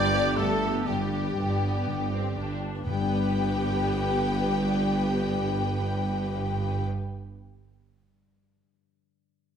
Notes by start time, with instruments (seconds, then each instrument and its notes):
Already playing: tuba G1, double bass section G1, cello section G2, harp G2 D3 G4 B4 D5 B5 D6, viola section B3 G4, french horn section D4, violin section D5, cor anglais G5, flute section D6
0.00 harp G3
0.12 viola section B3 G4, harp B4
0.25 harp D5
0.36 tuba G1, double bass section G1, cello section G2, french horn section A3, violin section A4, cor anglais E5, flute section A5, harp B5
0.50 harp D5
0.62 viola section B3 G4, harp G4
0.74 harp B4
0.86 tuba G1, double bass section G1, cello section G2, harp G2, french horn section G3, violin section G4, cor anglais D5, flute section G5
1.01 harp G3
1.12 viola section B3 G4, harp B4
1.25 harp D5
1.36 tuba G1, double bass section G1, cello section G2, viola section B3, harp B5
1.49 harp D5
1.62 harp G4
1.74 harp B4
1.87 tuba G1, double bass section G1, cello section G2, harp D3
1.99 harp G3
2.11 viola section C4, harp B4
2.24 harp D5
2.37 tuba G1, double bass section G1, cello section G2, viola section D4, harp B5
2.50 harp D5
2.61 harp G4
2.75 harp B4
2.85 tuba G1, double bass section G1, cello section G2, timpani G2, harp G2, french horn section G3, viola section B3 G4, violin section B4 G5, flute section G5
2.94 harp G3
3.01 harp D4
3.08 harp B4
3.15 harp D5